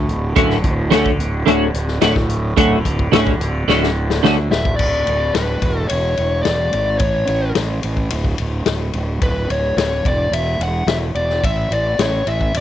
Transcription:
Already playing: tanpura D2 A2 D3
0.08 fingered electric bass D1, closed hi-hat
0.20 tanpura D3
0.36 fingered electric bass D1, clean electric guitar D3 A3 C#4 F#4, kick, closed hi-hat
0.50 snare
0.64 fingered electric bass D1, kick, closed hi-hat
0.82 tanpura D3
0.91 fingered electric bass D2, clean electric guitar D3 A3 C#4 F#4, snare, closed hi-hat
1.06 kick
1.19 fingered electric bass D1, closed hi-hat
1.44 fingered electric bass D1, tanpura D2, clean electric guitar D3 A3 C#4, closed hi-hat
1.48 clean electric guitar F#4
1.74 fingered electric bass D1, closed hi-hat
1.88 snare
2.01 fingered electric bass D1, clean electric guitar D3 A3 C#4 F#4, snare, closed hi-hat
2.06 tanpura A2
2.15 muted clean electric guitar stroke, kick, snare
2.29 closed hi-hat
2.57 fingered electric bass D1, clean electric guitar D3 A3 C#4 F#4, kick, closed hi-hat
2.68 tanpura D3
2.85 fingered electric bass D1, kick, closed hi-hat
2.99 kick
3.12 fingered electric bass D1, clean electric guitar D3 A3 C#4 F#4, snare, closed hi-hat
3.27 tanpura D3, kick
3.39 fingered electric bass D1, closed hi-hat
3.67 fingered electric bass D1, clean electric guitar D3 A3 C#4 F#4, snare
3.83 snare
3.93 tanpura D2
4.10 snare
4.23 fingered electric bass D2, clean electric guitar D3 A3 C#4 F#4, snare
4.37 muted clean electric guitar stroke
4.50 fingered electric bass D1, lead electric guitar E5, snare
4.57 tanpura A2
4.65 kick
4.76 fingered electric bass D1, lead electric guitar D5, kick, crash
5.07 fingered electric bass D1, ride
5.34 fingered electric bass D1, lead electric guitar B4, snare, ride
5.61 fingered electric bass E1, kick, ride
5.89 fingered electric bass E1, lead electric guitar C#5, ride
6.17 fingered electric bass E1, ride
6.43 fingered electric bass E1, lead electric guitar D5, snare, ride
6.73 fingered electric bass G#1, ride
6.99 fingered electric bass A1, lead electric guitar C#5, kick, ride
7.27 fingered electric bass A1, ride
7.55 fingered electric bass A1, snare, ride
7.83 fingered electric bass A1, ride
7.97 kick
8.10 fingered electric bass D1, ride
8.24 kick
8.38 fingered electric bass D1, ride
8.66 fingered electric bass D1, snare, ride
8.93 fingered electric bass D1, ride
9.22 fingered electric bass D1, lead electric guitar B4, kick, ride
9.50 fingered electric bass D1, lead electric guitar C#5, ride
9.76 fingered electric bass D1, lead electric guitar C#5, snare, ride
10.05 fingered electric bass E1, lead electric guitar D5, kick, ride
10.31 fingered electric bass E1, lead electric guitar E5, ride
10.59 fingered electric bass E1, lead electric guitar F#5, ride
10.86 fingered electric bass E1, lead electric guitar E5, snare, ride
11.15 fingered electric bass E1, lead electric guitar D5, ride
11.30 snare
11.43 fingered electric bass A1, lead electric guitar E5, kick, ride
11.70 fingered electric bass A1, lead electric guitar D5, ride
11.99 fingered electric bass A1, lead electric guitar C#5, snare, ride
12.27 fingered electric bass A1, lead electric guitar E5, ride
12.41 kick
12.54 fingered electric bass D1, lead electric guitar D5, ride

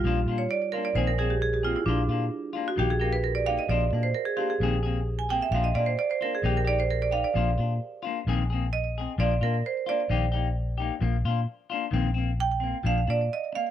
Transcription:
0.04 fingered electric bass A#1, clean electric guitar F3 A#3 D4 F4
0.26 fingered electric bass A#2, clean electric guitar D4 F4
0.31 clean electric guitar A#3
0.38 marimba C#5
0.51 marimba D5
0.72 clean electric guitar D4 F4, marimba A#4
0.77 clean electric guitar A#3
0.85 marimba D5
0.95 fingered electric bass A#1, clean electric guitar D#3 A#3 C4 G#4, marimba C5
1.07 marimba A#4
1.18 clean electric guitar A#3 C4 G#4, marimba G#4
1.30 marimba G4
1.42 marimba G#4
1.54 marimba G4
1.63 clean electric guitar A#3 C4 G#4, marimba F4
1.76 marimba E4
1.86 fingered electric bass A#1, clean electric guitar F3 A#3 D4 F4, marimba D4
2.08 fingered electric bass A#2, clean electric guitar D4 F4
2.12 clean electric guitar A#3
2.53 clean electric guitar A#3 D4 F4
2.68 marimba F#4
2.76 fingered electric bass A#1, clean electric guitar D#3 A#3 D#4 G4, marimba G4
2.90 marimba G#4
3.00 clean electric guitar A#3 D#4 G4, marimba A#4
3.13 marimba B4
3.24 marimba A#4
3.35 marimba D5
3.46 clean electric guitar A#3 D#4 G4, marimba F5
3.59 marimba D#5
3.69 fingered electric bass A#1, clean electric guitar F3 A#3 D4 F4, marimba D5
3.91 fingered electric bass A#2, clean electric guitar A#3 D4, muted clean electric guitar stroke
4.03 marimba C5
4.15 marimba A#4
4.25 marimba G#4
4.37 clean electric guitar A#3 D4 F4, marimba G4
4.50 marimba G#4
4.60 fingered electric bass A#1, clean electric guitar D#3 A#3 C4 G#4
4.83 clean electric guitar A#3 C4 G#4
5.19 marimba G#5
5.29 clean electric guitar A#3 C4 G#4, marimba G5
5.42 marimba E5
5.51 fingered electric bass A#1, clean electric guitar F3 A#3 D4 F4, marimba F5
5.64 marimba D#5
5.74 fingered electric bass A#2, clean electric guitar D4 F4, marimba D5
5.79 clean electric guitar A#3
5.86 marimba C5
5.99 marimba D5
6.11 marimba C5
6.21 clean electric guitar A#3 D4 F4, marimba A#4
6.35 marimba G#4
6.43 fingered electric bass A#1, clean electric guitar D#3 A#3 D#4 G4, marimba G4
6.57 marimba A#4
6.65 clean electric guitar D#4 G4, marimba D5
6.80 marimba C5
6.91 marimba A#4
7.02 marimba D5
7.11 clean electric guitar D#4 G4, marimba F5
7.24 marimba D5
7.34 fingered electric bass A#1, clean electric guitar F3 A#3 D4 F4
7.58 fingered electric bass A#2, clean electric guitar D4 F4
8.03 clean electric guitar D4 F4
8.07 clean electric guitar A#3
8.27 fingered electric bass A#1, clean electric guitar D#3 A#3 C4 G#4
8.50 clean electric guitar A#3 C4 G#4
8.73 marimba D#5
8.98 clean electric guitar C4 G#4, muted clean electric guitar stroke
9.18 fingered electric bass A#1, clean electric guitar F3 A#3 D4 F4, marimba D5
9.41 fingered electric bass A#2, clean electric guitar A#3 D4 F4, marimba A#4
9.66 marimba C5
9.86 clean electric guitar A#3 D4 F4, marimba D5
10.10 fingered electric bass A#1, clean electric guitar D#3 A#3 D#4 G4
10.32 clean electric guitar A#3 D#4 G4
10.78 clean electric guitar D#4 G4
10.82 clean electric guitar A#3
11.01 fingered electric bass A#1, clean electric guitar F3 A#3, muted clean electric guitar stroke
11.25 fingered electric bass A#2, clean electric guitar A#3 D4 F4
11.70 clean electric guitar A#3 D4 F4
11.91 fingered electric bass A#1, clean electric guitar D#3 A#3 C4
12.14 clean electric guitar A#3 C4
12.40 marimba G5
12.60 clean electric guitar A#3 C4
12.83 fingered electric bass A#1, clean electric guitar F3 A#3 D4, marimba F5
13.07 fingered electric bass A#2, clean electric guitar D4, marimba D5
13.33 marimba D#5
13.53 clean electric guitar A#3, marimba F5, muted clean electric guitar stroke

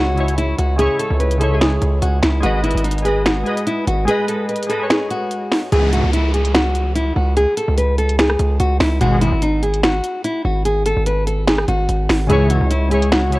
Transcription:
Already playing: 808-style bass C#2, synth keys C#3 G#3 E4 C#5, nylon-string guitar F#4
0.15 synth keys C#3 G#3 E4, closed hi-hat
0.20 synth keys C#5
0.28 closed hi-hat
0.38 nylon-string guitar E4, closed hi-hat
0.58 808-style bass C#2, nylon-string guitar F#4, closed hi-hat
0.76 synth keys C#3 G#3 E4, nylon-string guitar G#4, closed hi-hat
0.82 synth keys C#5
0.99 nylon-string guitar A4, closed hi-hat
1.11 808-style bass C#2
1.20 nylon-string guitar B4, closed hi-hat
1.31 closed hi-hat
1.38 synth keys C#3 G#3 E4, nylon-string guitar A4, closed hi-hat
1.44 synth keys C#5
1.49 synth keys C#3 G#3 E4
1.54 synth keys G#4
1.61 nylon-string guitar G#4, finger snap, snare, closed hi-hat
1.82 808-style bass C#2, closed hi-hat
2.02 808-style bass C#2, nylon-string guitar F#4, closed hi-hat
2.22 808-style bass C#2, nylon-string guitar E4, finger snap, snare, closed hi-hat
2.41 808-style bass G#1, synth keys G#3 G#4 B4, nylon-string guitar F#4, closed hi-hat
2.46 synth keys D#5
2.64 nylon-string guitar E4, closed hi-hat
2.71 closed hi-hat
2.75 808-style bass G#1, closed hi-hat
2.84 nylon-string guitar D#4, closed hi-hat
2.91 closed hi-hat
2.98 closed hi-hat
3.02 synth keys G#3 G#4 B4, nylon-string guitar G#4, closed hi-hat
3.08 synth keys D#5
3.26 nylon-string guitar F#4, finger snap, snare, closed hi-hat
3.43 synth keys G#3 G#4 B4, closed hi-hat
3.49 synth keys D#5
3.57 closed hi-hat
3.67 nylon-string guitar E4, closed hi-hat
3.87 808-style bass G#1, nylon-string guitar F#4, closed hi-hat
4.05 synth keys G#3 G#4 B4, nylon-string guitar G#4, closed hi-hat
4.11 synth keys D#5
4.28 nylon-string guitar A4, closed hi-hat
4.49 nylon-string guitar B4, closed hi-hat
4.56 closed hi-hat
4.63 closed hi-hat
4.67 synth keys G#3 G#4 B4, nylon-string guitar A4, closed hi-hat
4.72 synth keys D#5
4.78 synth keys G#3 G#4 B4
4.83 synth keys C#5
4.90 nylon-string guitar G#4, finger snap, snare, closed hi-hat
5.11 nylon-string guitar F#4, closed hi-hat
5.31 closed hi-hat
5.52 finger snap, snare, open hi-hat
5.72 808-style bass C#2, analog polysynth C#2 G#2 E3, nylon-string guitar G#4, closed hi-hat, downlifter
5.93 nylon-string guitar F#4, closed hi-hat
6.04 808-style bass C#2
6.13 nylon-string guitar E4, closed hi-hat
6.34 nylon-string guitar G#4, closed hi-hat
6.45 closed hi-hat
6.54 nylon-string guitar F#4, finger snap, snare, closed hi-hat
6.75 closed hi-hat
6.95 nylon-string guitar E4, closed hi-hat
7.16 808-style bass C#2, nylon-string guitar F#4
7.37 nylon-string guitar G#4, closed hi-hat
7.57 nylon-string guitar A4, closed hi-hat
7.68 808-style bass C#2
7.78 nylon-string guitar B4, closed hi-hat
7.98 nylon-string guitar A4, closed hi-hat
8.09 closed hi-hat
8.19 nylon-string guitar G#4, finger snap, snare, closed hi-hat
8.30 cross-stick
8.39 808-style bass C#2, closed hi-hat
8.60 808-style bass C#2, nylon-string guitar F#4, closed hi-hat
8.80 808-style bass C#2, nylon-string guitar E4, finger snap, snare, open hi-hat
9.01 808-style bass G#1, analog polysynth D#2 B2 G#3, nylon-string guitar F#4, closed hi-hat
9.21 nylon-string guitar E4, closed hi-hat
9.32 808-style bass G#1
9.42 nylon-string guitar D#4, closed hi-hat
9.63 nylon-string guitar G#4, closed hi-hat
9.74 closed hi-hat
9.83 nylon-string guitar F#4, finger snap, snare, closed hi-hat
10.04 closed hi-hat
10.24 nylon-string guitar E4, closed hi-hat
10.45 808-style bass G#1, nylon-string guitar F#4
10.65 nylon-string guitar G#4, closed hi-hat
10.86 nylon-string guitar A4, closed hi-hat
10.97 808-style bass G#1
11.06 nylon-string guitar B4, closed hi-hat
11.27 nylon-string guitar A4, closed hi-hat
11.48 nylon-string guitar G#4, finger snap, snare, closed hi-hat
11.58 cross-stick
11.68 808-style bass G#1, nylon-string guitar F#4, closed hi-hat
11.89 808-style bass G#1, closed hi-hat
12.09 808-style bass G#1, finger snap, snare, open hi-hat
12.27 analog polysynth C#2 G#2 E3, 808-style bass C#2, synth keys C#3 G#3 E4, nylon-string guitar G#4, closed hi-hat
12.33 synth keys C#5
12.50 nylon-string guitar F#4, closed hi-hat
12.61 808-style bass C#2
12.71 nylon-string guitar E4, closed hi-hat
12.88 synth keys C#3 G#3 E4, nylon-string guitar G#4, closed hi-hat
12.94 synth keys C#5
13.02 closed hi-hat
13.12 nylon-string guitar F#4, finger snap, snare, closed hi-hat
13.30 synth keys C#3 G#3 E4, closed hi-hat
13.35 synth keys C#5

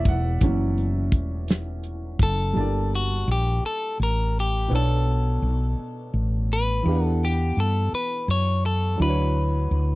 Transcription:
Already playing: grand piano E3 F#3 C#4 C#5 D5 E5 F#5
0.05 fretless electric bass E1, grand piano F#5, kick, closed hi-hat
0.41 fretless electric bass F#1, grand piano E3 F#3 C#4, kick, closed hi-hat
0.78 closed hi-hat
1.12 fretless electric bass E1, kick, closed hi-hat
1.48 snare, closed hi-hat
1.83 closed hi-hat
2.19 fretless electric bass F#1, clean electric guitar A4, kick, closed hi-hat
2.53 fretless electric bass G1, grand piano G3 D4 A5
2.59 grand piano A#3 D5
2.95 clean electric guitar F#4
3.28 fretless electric bass A#1, clean electric guitar G4
3.63 clean electric guitar A4, muted fretless electric bass stroke
4.00 fretless electric bass A1, clean electric guitar A#4
4.40 clean electric guitar G4
4.68 fretless electric bass B1, grand piano B2 B3 D4
4.73 grand piano A4 C#5, clean electric guitar A4
5.42 fretless electric bass B1
5.79 muted fretless electric bass stroke
6.14 fretless electric bass A1
6.53 clean electric guitar B4
6.83 fretless electric bass E2, grand piano E3 B3 D4
6.88 grand piano G4 F5
6.96 grand piano F#5
7.06 clean electric guitar A4
7.25 clean electric guitar G4
7.57 fretless electric bass G2, clean electric guitar A4
7.93 clean electric guitar B4, muted fretless electric bass stroke
8.28 fretless electric bass F#2, clean electric guitar C#5
8.66 clean electric guitar A4
8.96 fretless electric bass D2, grand piano F#3 D4 E4
9.01 grand piano F#4 B4, clean electric guitar B4
9.10 grand piano C#5
9.71 fretless electric bass D2

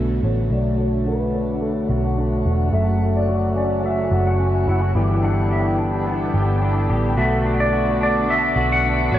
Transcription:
Already playing: picked electric bass B1, tonewheel organ D3 A3 B3 F#4, clean electric guitar A3 D4 F#4, electric slide guitar F#5
0.23 picked electric bass A1, clean electric guitar F#4, electric slide guitar C#5
0.51 picked electric bass B1, clean electric guitar A3 F#4, tonewheel organ C#5, electric slide guitar D5
0.78 clean electric guitar D4, electric slide guitar C#5
1.06 clean electric guitar F#4, electric slide guitar B4
1.34 clean electric guitar D4
1.61 clean electric guitar A3
1.89 picked electric bass B1, clean electric guitar F#4
1.98 electric slide guitar A4
2.17 clean electric guitar D4
2.45 picked electric bass E1, clean electric guitar F#4
2.72 picked electric bass F#1, tonewheel organ C#3 F#3 F#4, clean electric guitar A3 F#4, electric slide guitar E5
3.16 electric slide guitar D5
3.28 clean electric guitar F#4
3.56 clean electric guitar C#4, electric slide guitar D5
3.84 clean electric guitar A3, electric slide guitar E5
4.12 picked electric bass F#1, clean electric guitar F#4
4.27 electric slide guitar F#5
4.39 clean electric guitar C#4
4.67 picked electric bass F#1, clean electric guitar E4, electric slide guitar F#5
4.81 clean electric guitar F#4
4.95 picked electric bass G1, tonewheel organ D3 G3 B3 E4, clean electric guitar E3 G4, electric slide guitar G5
5.22 clean electric guitar D4, electric slide guitar F#5
5.50 clean electric guitar G4, electric slide guitar E5
5.78 clean electric guitar D4
6.06 clean electric guitar B3
6.34 picked electric bass G1, clean electric guitar G4
6.62 clean electric guitar D4
6.89 picked electric bass A1, clean electric guitar G4
7.17 picked electric bass B1, clean electric guitar A3 F#4, tonewheel organ A3 F#4, electric slide guitar E5
7.45 clean electric guitar D4
7.60 electric slide guitar D5
7.73 clean electric guitar F#4
8.01 clean electric guitar D4, electric slide guitar D5
8.28 clean electric guitar A3, electric slide guitar E5
8.56 picked electric bass B1, clean electric guitar F#4
8.72 electric slide guitar F#5
8.84 clean electric guitar D4
9.12 picked electric bass A1, clean electric guitar F#4, electric slide guitar C#5

